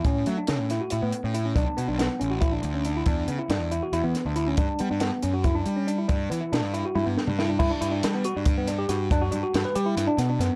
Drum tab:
CC |--------------|--------------|--------------|--------------|
HH |x-x-x-x-x-x-x-|x-x-x-x-x-x-x-|x-x-x-x-x-x-x-|x-x-x-x-x-x-x-|
SD |----o-o-------|----o---------|----o-----o---|----o---------|
T1 |--------------|--------------|--------------|--------------|
T2 |--------------|--------------|--------------|--------------|
BD |o-------------|o-------o-----|o-------------|o-------o-----|

CC |--------------|x-------------|--------------|
HH |x-x-x-x-------|--x-x-x-x-x-x-|x-x-x-x-x-x-x-|
SD |----o-----o-o-|----o-----o-o-|----o---o-o-o-|
T1 |--------o-----|--------------|--------------|
T2 |-----------o--|--------------|--------------|
BD |o-------------|o-------o-----|o-------------|